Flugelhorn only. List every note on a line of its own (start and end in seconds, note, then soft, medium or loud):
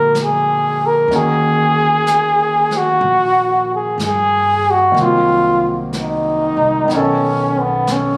0.00 0.15 A#4 medium
0.22 0.88 G#4 medium
0.86 1.17 A#4 medium
1.16 2.79 G#4 medium
2.77 3.71 F#4 medium
3.75 4.01 G#4 medium
4.06 4.72 G#4 medium
4.71 5.03 F#4 medium
5.02 5.78 F4 medium
5.99 6.98 D#4 medium
6.97 7.62 C#4 medium
7.60 7.94 B3 medium
7.92 8.17 C#4 medium